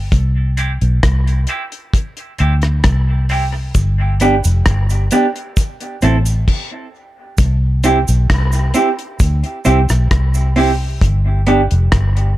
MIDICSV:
0, 0, Header, 1, 4, 480
1, 0, Start_track
1, 0, Key_signature, 0, "major"
1, 0, Tempo, 908128
1, 63, Time_signature, 4, 2, 24, 8
1, 6542, End_track
2, 0, Start_track
2, 0, Title_t, "Clean electric guitar"
2, 0, Program_c, 0, 27
2, 303, Note_on_c, 0, 60, 81
2, 307, Note_on_c, 0, 64, 83
2, 310, Note_on_c, 0, 67, 94
2, 374, Note_off_c, 0, 60, 0
2, 376, Note_off_c, 0, 64, 0
2, 377, Note_off_c, 0, 67, 0
2, 786, Note_on_c, 0, 60, 72
2, 789, Note_on_c, 0, 64, 88
2, 793, Note_on_c, 0, 67, 79
2, 855, Note_off_c, 0, 60, 0
2, 857, Note_off_c, 0, 64, 0
2, 858, Note_off_c, 0, 67, 0
2, 1263, Note_on_c, 0, 60, 76
2, 1268, Note_on_c, 0, 64, 80
2, 1272, Note_on_c, 0, 67, 84
2, 1334, Note_off_c, 0, 60, 0
2, 1336, Note_off_c, 0, 64, 0
2, 1338, Note_off_c, 0, 67, 0
2, 1743, Note_on_c, 0, 60, 74
2, 1749, Note_on_c, 0, 64, 78
2, 1752, Note_on_c, 0, 67, 93
2, 1814, Note_off_c, 0, 60, 0
2, 1817, Note_off_c, 0, 64, 0
2, 1818, Note_off_c, 0, 67, 0
2, 2226, Note_on_c, 0, 59, 82
2, 2229, Note_on_c, 0, 62, 90
2, 2232, Note_on_c, 0, 67, 94
2, 2295, Note_off_c, 0, 59, 0
2, 2297, Note_off_c, 0, 62, 0
2, 2298, Note_off_c, 0, 67, 0
2, 2706, Note_on_c, 0, 59, 80
2, 2710, Note_on_c, 0, 62, 82
2, 2713, Note_on_c, 0, 67, 85
2, 2775, Note_off_c, 0, 59, 0
2, 2777, Note_off_c, 0, 62, 0
2, 2779, Note_off_c, 0, 67, 0
2, 3184, Note_on_c, 0, 60, 85
2, 3190, Note_on_c, 0, 64, 86
2, 3194, Note_on_c, 0, 69, 89
2, 3254, Note_off_c, 0, 60, 0
2, 3257, Note_off_c, 0, 64, 0
2, 3259, Note_off_c, 0, 69, 0
2, 4143, Note_on_c, 0, 60, 75
2, 4149, Note_on_c, 0, 64, 79
2, 4151, Note_on_c, 0, 67, 93
2, 4214, Note_off_c, 0, 60, 0
2, 4217, Note_off_c, 0, 64, 0
2, 4218, Note_off_c, 0, 67, 0
2, 4622, Note_on_c, 0, 60, 76
2, 4627, Note_on_c, 0, 64, 83
2, 4632, Note_on_c, 0, 67, 92
2, 4693, Note_off_c, 0, 60, 0
2, 4695, Note_off_c, 0, 64, 0
2, 4698, Note_off_c, 0, 67, 0
2, 5101, Note_on_c, 0, 60, 93
2, 5104, Note_on_c, 0, 64, 90
2, 5108, Note_on_c, 0, 67, 88
2, 5172, Note_off_c, 0, 60, 0
2, 5174, Note_off_c, 0, 64, 0
2, 5176, Note_off_c, 0, 67, 0
2, 5582, Note_on_c, 0, 60, 76
2, 5587, Note_on_c, 0, 64, 80
2, 5590, Note_on_c, 0, 67, 92
2, 5653, Note_off_c, 0, 60, 0
2, 5655, Note_off_c, 0, 64, 0
2, 5657, Note_off_c, 0, 67, 0
2, 6062, Note_on_c, 0, 59, 83
2, 6067, Note_on_c, 0, 62, 90
2, 6070, Note_on_c, 0, 67, 86
2, 6133, Note_off_c, 0, 59, 0
2, 6135, Note_off_c, 0, 62, 0
2, 6137, Note_off_c, 0, 67, 0
2, 6542, End_track
3, 0, Start_track
3, 0, Title_t, "Fingered electric bass"
3, 0, Program_c, 1, 33
3, 66, Note_on_c, 1, 36, 90
3, 408, Note_off_c, 1, 36, 0
3, 432, Note_on_c, 1, 35, 79
3, 535, Note_off_c, 1, 35, 0
3, 550, Note_on_c, 1, 36, 91
3, 766, Note_off_c, 1, 36, 0
3, 1270, Note_on_c, 1, 38, 85
3, 1486, Note_off_c, 1, 38, 0
3, 1506, Note_on_c, 1, 36, 94
3, 1963, Note_off_c, 1, 36, 0
3, 1985, Note_on_c, 1, 31, 91
3, 2328, Note_off_c, 1, 31, 0
3, 2354, Note_on_c, 1, 29, 85
3, 2456, Note_off_c, 1, 29, 0
3, 2467, Note_on_c, 1, 31, 84
3, 2684, Note_off_c, 1, 31, 0
3, 3187, Note_on_c, 1, 33, 82
3, 3404, Note_off_c, 1, 33, 0
3, 3905, Note_on_c, 1, 36, 95
3, 4248, Note_off_c, 1, 36, 0
3, 4275, Note_on_c, 1, 35, 89
3, 4376, Note_off_c, 1, 35, 0
3, 4389, Note_on_c, 1, 36, 88
3, 4605, Note_off_c, 1, 36, 0
3, 4865, Note_on_c, 1, 38, 96
3, 4978, Note_off_c, 1, 38, 0
3, 5108, Note_on_c, 1, 36, 96
3, 5219, Note_off_c, 1, 36, 0
3, 5232, Note_on_c, 1, 35, 87
3, 5335, Note_off_c, 1, 35, 0
3, 5347, Note_on_c, 1, 36, 98
3, 5804, Note_off_c, 1, 36, 0
3, 5824, Note_on_c, 1, 31, 88
3, 6167, Note_off_c, 1, 31, 0
3, 6194, Note_on_c, 1, 29, 86
3, 6296, Note_off_c, 1, 29, 0
3, 6307, Note_on_c, 1, 31, 87
3, 6524, Note_off_c, 1, 31, 0
3, 6542, End_track
4, 0, Start_track
4, 0, Title_t, "Drums"
4, 63, Note_on_c, 9, 36, 115
4, 64, Note_on_c, 9, 42, 84
4, 116, Note_off_c, 9, 36, 0
4, 117, Note_off_c, 9, 42, 0
4, 303, Note_on_c, 9, 42, 69
4, 356, Note_off_c, 9, 42, 0
4, 431, Note_on_c, 9, 42, 53
4, 483, Note_off_c, 9, 42, 0
4, 545, Note_on_c, 9, 37, 111
4, 545, Note_on_c, 9, 42, 92
4, 546, Note_on_c, 9, 36, 114
4, 598, Note_off_c, 9, 37, 0
4, 598, Note_off_c, 9, 42, 0
4, 599, Note_off_c, 9, 36, 0
4, 674, Note_on_c, 9, 42, 46
4, 726, Note_off_c, 9, 42, 0
4, 776, Note_on_c, 9, 42, 73
4, 829, Note_off_c, 9, 42, 0
4, 909, Note_on_c, 9, 42, 55
4, 962, Note_off_c, 9, 42, 0
4, 1023, Note_on_c, 9, 36, 112
4, 1027, Note_on_c, 9, 42, 94
4, 1076, Note_off_c, 9, 36, 0
4, 1080, Note_off_c, 9, 42, 0
4, 1146, Note_on_c, 9, 42, 52
4, 1199, Note_off_c, 9, 42, 0
4, 1260, Note_on_c, 9, 42, 64
4, 1313, Note_off_c, 9, 42, 0
4, 1383, Note_on_c, 9, 42, 50
4, 1390, Note_on_c, 9, 37, 68
4, 1436, Note_off_c, 9, 42, 0
4, 1443, Note_off_c, 9, 37, 0
4, 1499, Note_on_c, 9, 42, 86
4, 1500, Note_on_c, 9, 37, 106
4, 1503, Note_on_c, 9, 36, 108
4, 1552, Note_off_c, 9, 42, 0
4, 1553, Note_off_c, 9, 37, 0
4, 1556, Note_off_c, 9, 36, 0
4, 1740, Note_on_c, 9, 46, 67
4, 1793, Note_off_c, 9, 46, 0
4, 1980, Note_on_c, 9, 42, 93
4, 1981, Note_on_c, 9, 36, 119
4, 1982, Note_on_c, 9, 69, 59
4, 2033, Note_off_c, 9, 42, 0
4, 2034, Note_off_c, 9, 36, 0
4, 2035, Note_off_c, 9, 69, 0
4, 2219, Note_on_c, 9, 42, 69
4, 2226, Note_on_c, 9, 69, 50
4, 2272, Note_off_c, 9, 42, 0
4, 2279, Note_off_c, 9, 69, 0
4, 2348, Note_on_c, 9, 69, 75
4, 2349, Note_on_c, 9, 42, 55
4, 2401, Note_off_c, 9, 69, 0
4, 2402, Note_off_c, 9, 42, 0
4, 2461, Note_on_c, 9, 37, 111
4, 2461, Note_on_c, 9, 42, 89
4, 2464, Note_on_c, 9, 36, 115
4, 2514, Note_off_c, 9, 37, 0
4, 2514, Note_off_c, 9, 42, 0
4, 2517, Note_off_c, 9, 36, 0
4, 2589, Note_on_c, 9, 69, 42
4, 2593, Note_on_c, 9, 42, 46
4, 2642, Note_off_c, 9, 69, 0
4, 2645, Note_off_c, 9, 42, 0
4, 2699, Note_on_c, 9, 42, 75
4, 2703, Note_on_c, 9, 69, 69
4, 2752, Note_off_c, 9, 42, 0
4, 2756, Note_off_c, 9, 69, 0
4, 2831, Note_on_c, 9, 42, 49
4, 2884, Note_off_c, 9, 42, 0
4, 2943, Note_on_c, 9, 69, 71
4, 2944, Note_on_c, 9, 36, 117
4, 2950, Note_on_c, 9, 42, 84
4, 2996, Note_off_c, 9, 69, 0
4, 2997, Note_off_c, 9, 36, 0
4, 3003, Note_off_c, 9, 42, 0
4, 3068, Note_on_c, 9, 42, 52
4, 3121, Note_off_c, 9, 42, 0
4, 3181, Note_on_c, 9, 69, 47
4, 3183, Note_on_c, 9, 42, 65
4, 3233, Note_off_c, 9, 69, 0
4, 3236, Note_off_c, 9, 42, 0
4, 3306, Note_on_c, 9, 42, 50
4, 3308, Note_on_c, 9, 69, 62
4, 3359, Note_off_c, 9, 42, 0
4, 3361, Note_off_c, 9, 69, 0
4, 3424, Note_on_c, 9, 36, 93
4, 3426, Note_on_c, 9, 49, 86
4, 3477, Note_off_c, 9, 36, 0
4, 3479, Note_off_c, 9, 49, 0
4, 3900, Note_on_c, 9, 69, 64
4, 3903, Note_on_c, 9, 36, 127
4, 3904, Note_on_c, 9, 42, 96
4, 3952, Note_off_c, 9, 69, 0
4, 3956, Note_off_c, 9, 36, 0
4, 3957, Note_off_c, 9, 42, 0
4, 4142, Note_on_c, 9, 42, 74
4, 4142, Note_on_c, 9, 69, 51
4, 4195, Note_off_c, 9, 42, 0
4, 4195, Note_off_c, 9, 69, 0
4, 4270, Note_on_c, 9, 69, 79
4, 4273, Note_on_c, 9, 42, 53
4, 4323, Note_off_c, 9, 69, 0
4, 4325, Note_off_c, 9, 42, 0
4, 4386, Note_on_c, 9, 36, 108
4, 4386, Note_on_c, 9, 37, 127
4, 4386, Note_on_c, 9, 42, 93
4, 4438, Note_off_c, 9, 42, 0
4, 4439, Note_off_c, 9, 36, 0
4, 4439, Note_off_c, 9, 37, 0
4, 4505, Note_on_c, 9, 69, 47
4, 4515, Note_on_c, 9, 42, 45
4, 4558, Note_off_c, 9, 69, 0
4, 4568, Note_off_c, 9, 42, 0
4, 4619, Note_on_c, 9, 42, 72
4, 4622, Note_on_c, 9, 69, 77
4, 4671, Note_off_c, 9, 42, 0
4, 4675, Note_off_c, 9, 69, 0
4, 4750, Note_on_c, 9, 42, 53
4, 4803, Note_off_c, 9, 42, 0
4, 4861, Note_on_c, 9, 69, 75
4, 4863, Note_on_c, 9, 36, 123
4, 4868, Note_on_c, 9, 42, 92
4, 4914, Note_off_c, 9, 69, 0
4, 4916, Note_off_c, 9, 36, 0
4, 4921, Note_off_c, 9, 42, 0
4, 4988, Note_on_c, 9, 42, 52
4, 5041, Note_off_c, 9, 42, 0
4, 5100, Note_on_c, 9, 69, 49
4, 5104, Note_on_c, 9, 42, 69
4, 5153, Note_off_c, 9, 69, 0
4, 5157, Note_off_c, 9, 42, 0
4, 5226, Note_on_c, 9, 42, 53
4, 5229, Note_on_c, 9, 69, 63
4, 5233, Note_on_c, 9, 37, 71
4, 5279, Note_off_c, 9, 42, 0
4, 5282, Note_off_c, 9, 69, 0
4, 5286, Note_off_c, 9, 37, 0
4, 5344, Note_on_c, 9, 36, 112
4, 5344, Note_on_c, 9, 42, 102
4, 5345, Note_on_c, 9, 37, 106
4, 5396, Note_off_c, 9, 42, 0
4, 5397, Note_off_c, 9, 36, 0
4, 5397, Note_off_c, 9, 37, 0
4, 5467, Note_on_c, 9, 69, 50
4, 5520, Note_off_c, 9, 69, 0
4, 5581, Note_on_c, 9, 46, 76
4, 5634, Note_off_c, 9, 46, 0
4, 5822, Note_on_c, 9, 36, 115
4, 5825, Note_on_c, 9, 42, 92
4, 5875, Note_off_c, 9, 36, 0
4, 5878, Note_off_c, 9, 42, 0
4, 6060, Note_on_c, 9, 42, 71
4, 6113, Note_off_c, 9, 42, 0
4, 6188, Note_on_c, 9, 42, 57
4, 6241, Note_off_c, 9, 42, 0
4, 6300, Note_on_c, 9, 37, 127
4, 6300, Note_on_c, 9, 42, 94
4, 6303, Note_on_c, 9, 36, 123
4, 6353, Note_off_c, 9, 37, 0
4, 6353, Note_off_c, 9, 42, 0
4, 6356, Note_off_c, 9, 36, 0
4, 6431, Note_on_c, 9, 42, 46
4, 6483, Note_off_c, 9, 42, 0
4, 6542, End_track
0, 0, End_of_file